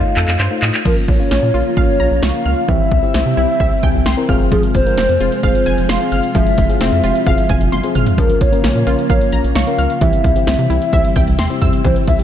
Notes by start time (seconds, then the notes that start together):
Already playing: A3 D#4 F4 F5
0.17 F2 A4, clap
0.28 F2, clap
0.40 G2 C5, clap
0.51 A3 D#4 F4
0.62 A2 D#5, clap
0.74 clap
0.85 A#1 C#3 F3 A#3 C#4 F4 A#4, kick, crash
1.08 A#1 C#5, kick
1.20 A#3 C#4 F4
1.31 A#1 C#4, snare
1.43 A#2
1.54 A#1 A#3 C#4 F4
1.77 A#1 A#3 C#4 F4 C#5 F5, kick
2.00 A#1 A#5
2.11 A#1
2.23 C2 F5 C#6, snare
2.34 A#3 C#4 F4
2.46 C#2 F6
2.69 C2 C3 E3 G3 C4 E4 G4 E5, kick
2.92 C2, kick
3.03 C4 E4 G4
3.14 C2 C4 E5, snare
3.26 C3
3.37 C2 C4 E4 G4
3.60 C2 C4 E4 G4 E5, kick
3.83 C2 G5 G#5, kick
3.95 C2
4.06 C2 G5 C6, snare
4.17 C4 E4 A#4
4.29 F1 F3 G#3 C4 F4 G#4 F5 F6, kick
4.52 F3 G#4, kick, closed hi-hat
4.63 closed hi-hat
4.75 F1 C5, kick, closed hi-hat
4.86 C4 F4 A#4, closed hi-hat
4.98 F1 C4, snare, closed hi-hat
5.09 F2, closed hi-hat
5.20 F1 C4 F4 G#4, closed hi-hat
5.32 closed hi-hat
5.43 F1 C4 F4 G#4 C5 F5, kick, closed hi-hat
5.55 closed hi-hat
5.66 F1 G#5, closed hi-hat
5.78 F1, closed hi-hat
5.89 F1 F5 C6, snare, closed hi-hat
6.00 C4 F4 G#4, closed hi-hat
6.12 G1 F6, closed hi-hat
6.23 closed hi-hat
6.35 F1 F3 C4 F4 G#4 E5, kick, closed hi-hat
6.46 closed hi-hat
6.58 F1, kick, closed hi-hat
6.69 C4 F4 G#4, closed hi-hat
6.81 F1 C4 E5, snare, closed hi-hat
6.92 F2, closed hi-hat
7.04 F1 C4 F4 G4, closed hi-hat
7.15 closed hi-hat
7.26 F1 C4 F4 G#4 F5, kick, closed hi-hat
7.38 closed hi-hat
7.49 F1 G#5, kick, closed hi-hat
7.61 F1, closed hi-hat
7.72 G1 C6, closed hi-hat, high tom
7.84 C4 F4 G#4, closed hi-hat
7.95 G#1 F6, closed hi-hat, mid tom
8.07 closed hi-hat, floor tom
8.18 A#1 C#3 F3 A#3 C#4 F4 A#4, kick, closed hi-hat
8.30 closed hi-hat
8.41 A#1 C#5, kick, closed hi-hat
8.53 C#4 F4 A#4, closed hi-hat
8.64 A#1 C#4, snare, closed hi-hat
8.75 A#2, closed hi-hat
8.87 A#1 C#4 F4 A#4, closed hi-hat
8.99 closed hi-hat
9.10 A#1 C#4 F4 A#4 C#5 F5, kick, closed hi-hat
9.21 closed hi-hat
9.32 A#1 A#5, closed hi-hat
9.44 A#1, closed hi-hat
9.55 C2 F5 C#6, snare, closed hi-hat
9.67 C#4 F4 A#4, closed hi-hat
9.78 C#2 F6, closed hi-hat
9.90 closed hi-hat
10.01 C2 C3 E3 G3 C4 E4 G4 E5, kick, closed hi-hat
10.13 closed hi-hat
10.24 C2, kick, closed hi-hat
10.36 C4 E4 G4, closed hi-hat
10.47 C2 C4 E5, snare, closed hi-hat
10.59 C3, closed hi-hat
10.70 C2 C4 E4 G4, closed hi-hat
10.82 closed hi-hat
10.93 C2 C4 E4 G4 E5, kick, closed hi-hat
11.05 closed hi-hat
11.16 C2 G5, kick, closed hi-hat
11.27 C2, closed hi-hat
11.39 E2 G5 C6, snare, closed hi-hat
11.50 C4 E4 G4, closed hi-hat
11.62 F2 E5 E6, kick, closed hi-hat
11.73 closed hi-hat
11.85 C2 E3 C4 E4 G4 C5, kick, closed hi-hat
11.96 closed hi-hat
12.07 C2 E5, kick, closed hi-hat
12.19 C4 E4 G4, closed hi-hat